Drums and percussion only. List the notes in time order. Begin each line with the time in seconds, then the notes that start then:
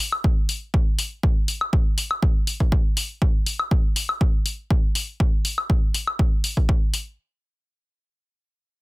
0.12 high woodblock
0.24 kick
0.49 open hi-hat
0.74 kick
0.99 open hi-hat
1.23 kick
1.48 open hi-hat
1.61 high woodblock
1.73 kick
1.98 open hi-hat
2.11 high woodblock
2.23 kick
2.47 open hi-hat
2.60 kick
2.72 kick
2.97 open hi-hat
3.22 kick
3.46 open hi-hat
3.59 high woodblock
3.71 kick
3.96 open hi-hat
4.09 high woodblock
4.21 kick
4.46 open hi-hat
4.70 kick
4.95 open hi-hat
5.20 kick
5.45 open hi-hat
5.58 high woodblock
5.70 kick
5.94 open hi-hat
6.07 high woodblock
6.19 kick
6.44 open hi-hat
6.57 kick
6.69 kick
6.94 open hi-hat